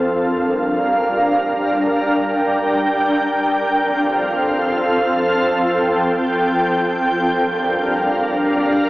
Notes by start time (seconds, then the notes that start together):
0.05 G3 D4 A#4 F5
1.83 G5
3.61 F3 C4 A4 F5
5.38 G5
7.16 G3 D4 A#4 F5